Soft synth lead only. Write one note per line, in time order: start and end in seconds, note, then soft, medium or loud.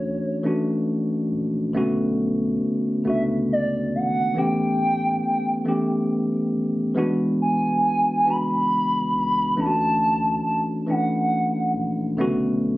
0.00 0.44 C#5 medium
3.09 3.23 E5 medium
3.53 3.91 D5 medium
3.95 4.39 F#5 medium
4.38 6.10 G5 loud
7.42 8.31 G#5 medium
8.30 9.61 B5 loud
9.60 10.45 A5 loud
10.47 10.61 A5 medium
10.90 11.83 F#5 medium